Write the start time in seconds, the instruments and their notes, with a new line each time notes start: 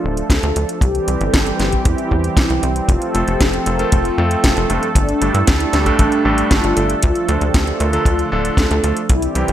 Already playing: analog synth pad F3 A3 D4 A4, analog polysynth F4
0.04 analog synth bass D1
0.17 closed hi-hat
0.30 analog synth bass D2, analog polysynth A4, kick, snare, closed hi-hat
0.43 analog synth bass D2, closed hi-hat
0.56 analog synth bass D2, closed hi-hat
0.69 closed hi-hat
0.81 analog synth bass C2, analog synth pad E3 G3 C4 G4, analog polysynth G4, kick, closed hi-hat
0.95 closed hi-hat
1.08 analog synth bass C2, closed hi-hat
1.21 analog synth bass G1, analog polysynth A4, closed hi-hat
1.34 analog synth bass G1, kick, snare, closed hi-hat
1.47 closed hi-hat
1.59 analog synth bass G1, analog polysynth G4, snare, closed hi-hat
1.72 kick, closed hi-hat
1.85 analog synth bass E2, analog polysynth E4, kick, closed hi-hat
1.98 closed hi-hat
2.11 analog synth bass E2, kick
2.24 closed hi-hat
2.37 analog synth bass C2, analog polysynth E4, kick, snare, closed hi-hat
2.50 analog synth bass C2, closed hi-hat
2.63 analog synth bass C2, closed hi-hat
2.76 closed hi-hat
2.89 analog synth bass F1, analog synth pad F3 A3 A4, analog polysynth F4, kick, closed hi-hat
3.02 closed hi-hat
3.15 analog synth bass F1, electric grand piano A3 C4 F4 A4, closed hi-hat
3.27 analog synth bass F1, analog polysynth G4, closed hi-hat
3.41 analog synth bass F1, kick, snare, closed hi-hat
3.53 closed hi-hat
3.66 analog synth bass F1, electric grand piano A3 C4 F4 A4, analog polysynth A#4, closed hi-hat
3.79 electric grand piano A3 C4 F4 A4, closed hi-hat
3.92 analog synth bass F1, analog polysynth F4, kick, closed hi-hat
4.05 closed hi-hat
4.18 analog synth bass F2, electric grand piano A3 C4 F4 A4
4.31 closed hi-hat
4.44 analog synth bass F1, analog polysynth A4, kick, snare, closed hi-hat
4.57 analog synth bass F1, closed hi-hat
4.70 analog synth bass F1, electric grand piano G2 A3 C4 F4 A4, closed hi-hat
4.83 closed hi-hat
4.95 analog synth bass G1, analog synth pad G3 D4, analog polysynth D4, kick, closed hi-hat
5.09 closed hi-hat
5.21 analog synth bass G1, electric grand piano G2 A3 D4 G4 A4, closed hi-hat
5.34 analog synth bass G2, analog polysynth E4, closed hi-hat
5.47 analog synth bass D2, kick, snare, closed hi-hat
5.60 closed hi-hat
5.73 analog synth bass D2, electric grand piano G2 A3 D4 G4 A4, analog polysynth G4, snare, closed hi-hat
5.86 electric grand piano G2 A3 D4 G4 A4, kick, closed hi-hat
5.99 analog synth bass A1, analog polysynth D4, kick, closed hi-hat
6.12 closed hi-hat
6.25 analog synth bass A1, electric grand piano G2 A3 D4 G4 A4
6.38 closed hi-hat
6.51 analog synth bass G1, analog polysynth F4, kick, snare, closed hi-hat
6.64 analog synth bass G1, closed hi-hat
6.77 analog synth bass G1, electric grand piano D3 A3 D4 G4 A4, closed hi-hat
6.90 closed hi-hat
7.03 analog synth bass D2, analog synth pad F3, analog polysynth F4, kick, closed hi-hat
7.15 closed hi-hat
7.28 analog synth bass D2, electric grand piano D3 A3 D4 F4 A4, closed hi-hat
7.41 analog synth bass D2, analog polysynth G4, closed hi-hat
7.54 analog synth bass D2, kick, snare, closed hi-hat
7.67 closed hi-hat
7.80 analog synth bass D2, electric grand piano D3 A3 D4 F4 A4, analog polysynth A#4, closed hi-hat
7.93 electric grand piano D3 A3 D4 F4 A4, closed hi-hat
8.05 analog synth bass D2, analog polysynth F4, kick, closed hi-hat
8.19 closed hi-hat
8.32 analog synth bass D1, electric grand piano D3 A3 D4 F4 A4
8.45 closed hi-hat
8.57 analog synth bass D2, analog polysynth A4, kick, snare, closed hi-hat
8.71 analog synth bass D2, closed hi-hat
8.84 analog synth bass D2, electric grand piano A3 D4 F4 A4, closed hi-hat
8.97 closed hi-hat
9.09 analog synth bass C2, analog synth pad E3 G3 C4 G4, analog polysynth E4, kick, closed hi-hat
9.22 closed hi-hat
9.35 analog synth bass C2, electric grand piano C3 G3 C4 E4 G4, closed hi-hat
9.48 analog synth bass G1, analog polysynth E4, closed hi-hat